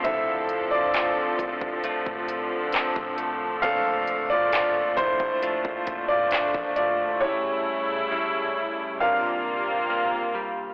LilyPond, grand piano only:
\new Staff \with { instrumentName = "Grand piano" } { \time 4/4 \key d \minor \tempo 4 = 67 << { <a' e''>8. <f' d''>2~ <f' d''>8. r8 | <a' f''>8. <f' d''>8. <e' c''>4~ <e' c''>16 <f' d''>8. <f' d''>8 | cis''2 <bes' f''>4. r8 | } \\ { <f c' e'>4. r2 r8 | <a c' d'>4. r2 r8 | <g cis' e'>8 r4. <bes d' f'>2 | } >> }